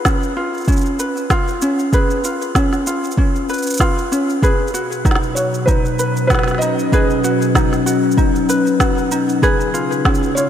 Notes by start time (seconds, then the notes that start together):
Already playing: F4 B4
0.05 C#4, kick, snare, shaker
0.23 shaker
0.37 F4
0.54 shaker
0.57 shaker
0.61 shaker
0.64 kick, shaker
0.68 C#4, shaker
0.72 shaker
0.77 shaker
0.81 shaker
0.86 shaker
0.99 B4, shaker
1.17 shaker
1.30 F4, kick, snare, shaker
1.48 shaker
1.62 C#4, shaker
1.79 shaker
1.93 G#4 B4, kick, shaker
2.10 shaker
2.24 F4, shaker
2.42 shaker
2.55 C#4, kick, snare, shaker
2.73 snare, shaker
2.87 F4, shaker
3.04 shaker
3.11 shaker
3.17 C#4, kick
3.36 shaker
3.49 B4, shaker
3.54 shaker
3.58 shaker
3.62 shaker
3.67 shaker
3.70 shaker
3.74 shaker
3.77 F4, kick, snare, shaker
3.98 shaker
4.12 C#4, shaker
4.30 shaker
4.42 B2 G#4 B4, kick, shaker
4.68 F#3, shaker
4.74 F#4, shaker
4.92 shaker
5.05 D#4, kick, snare, shaker
5.11 snare
5.15 snare
5.23 shaker
5.35 F#4 C#5, shaker
5.54 shaker
5.66 C#4 D#4 B4, kick, shaker
5.85 D#4, shaker
5.99 B4, shaker
6.17 shaker
6.27 F#4 B4, kick, snare, shaker
6.35 snare
6.39 snare
6.43 snare
6.48 snare, shaker
6.51 snare
6.55 snare
6.58 D#4 D#5, snare, shaker
6.79 shaker
6.92 G#4 B4, kick, shaker
7.10 shaker
7.24 F#4, shaker
7.42 shaker
7.55 D#4, kick, snare, shaker
7.73 snare, shaker
7.86 F#4, shaker
8.11 shaker
8.17 D#4, kick, shaker
8.36 shaker
8.49 B4, shaker
8.67 shaker
8.80 F#4, kick, snare, shaker
8.98 shaker
9.11 D#4, shaker
9.29 shaker
9.42 C#3 G#4 B4, kick, shaker
9.60 G#3, shaker
9.74 F4, shaker
9.92 shaker
10.05 C#4, kick, snare
10.15 shaker
10.23 shaker
10.35 F4 C#5, shaker